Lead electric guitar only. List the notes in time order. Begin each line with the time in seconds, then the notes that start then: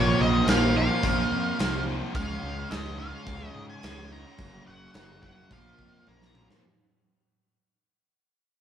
Already playing: C#5
0.22 D#5
0.49 F5
0.77 F5
2.16 F5
2.70 D#5
2.98 F5
3.48 D#5
3.70 G#5
4.12 A#5
4.67 F#5
4.96 F#5
5.23 F#5
5.53 F5
6.08 A#5